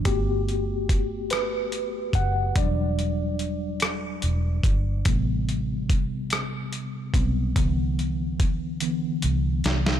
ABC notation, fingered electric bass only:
X:1
M:6/8
L:1/8
Q:3/8=48
K:G
V:1 name="Fingered electric bass" clef=bass
G,,,4- G,,, F,,, | E,,,4 E,,, G,,, | A,,,4- A,,, B,,, | C,,4 C,, C,, |]